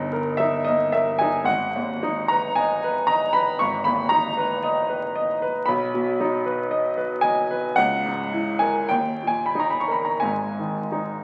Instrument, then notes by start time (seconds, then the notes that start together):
upright piano
Already playing: G1 G2 D#4 D#5
0.13 A#4
0.37 D#4 E5
0.64 A#3 D#5
0.92 A#4 E5
1.19 D#4 G#5
1.44 G#1 F#5
1.76 D#2
2.03 D#4
2.28 B4 A#5
2.55 D#5 G#5
2.84 B4
3.07 D#5 A#5
3.33 B4 B5
3.59 G#1 C#6
3.84 D#2 B5
4.09 D#4 A#5
4.37 B4
4.63 D#5
4.89 B4
5.15 D#5
5.42 B4
5.66 B1 B5
5.94 B2
6.20 D#4
6.46 B4
6.71 D#5
6.97 B4
7.21 D#5 G#5
7.51 B4
7.76 C#2 F#5
8.06 G#2
8.33 E4
8.59 A#4 G#5
8.89 D#2 G5
9.22 A#2
9.27 G#5
9.46 B5
9.55 D#4
9.60 A#5
9.70 B5
9.80 C#6
9.88 A#4 B5
10.05 A#5
10.20 G#1 G#2 G#5
10.59 D#3
10.92 D#4